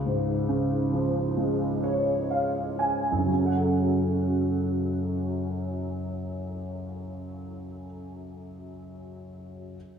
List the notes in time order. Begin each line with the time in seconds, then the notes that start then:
Already playing: C#2
0.06 G#2
0.49 C#3
0.92 F3
1.37 G#3
1.83 C#5
2.31 F5
2.79 G#5
3.12 F#2
3.18 C#3
3.25 F#3
3.32 C#4
3.39 A4
3.46 F#5